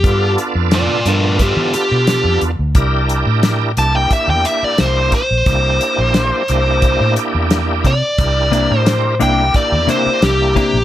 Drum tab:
HH |xxxxxxxx|xxxxxxxx|xxxxxxxx|xxxxxxxx|
SD |--o---o-|--o---o-|--o---o-|--o---o-|
BD |o---o---|o---o--o|o---o--o|o---o--o|